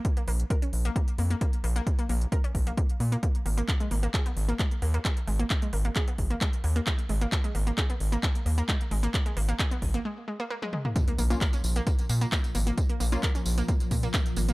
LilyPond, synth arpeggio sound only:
\new Staff \with { instrumentName = "Synth arpeggio sound" } { \time 4/4 \key aes \dorian \tempo 4 = 132 r16 bes16 bes16 r16 bes'16 des'16 r16 bes16 bes16 r16 bes16 bes16 bes16 r16 bes16 bes16 | r16 bes16 bes16 r16 bes'16 des'16 r16 bes16 bes16 r16 bes16 bes16 bes16 r16 bes16 bes16 | r16 aes16 bes16 bes16 aes'16 ces'16 r16 bes16 aes16 r16 bes16 bes16 aes16 r16 aes16 bes16 | r16 aes16 bes16 bes16 aes'16 ces'16 r16 bes16 aes16 r16 bes16 bes16 aes16 r16 aes16 bes16 |
r16 aes16 bes16 bes16 aes'16 ces'16 r16 bes16 aes16 r16 bes16 bes16 aes16 r16 aes16 bes16 | r16 aes16 bes16 bes16 aes'16 ces'16 r16 bes16 aes16 r16 aes16 bes16 bes16 aes16 aes16 bes16 | r16 bes16 bes16 bes16 bes'16 des'16 r16 bes16 bes16 r16 bes16 bes16 bes16 r16 bes16 bes16 | r16 bes16 bes16 bes16 bes'16 des'16 r16 bes16 bes16 r16 bes16 bes16 bes16 r16 bes16 bes16 | }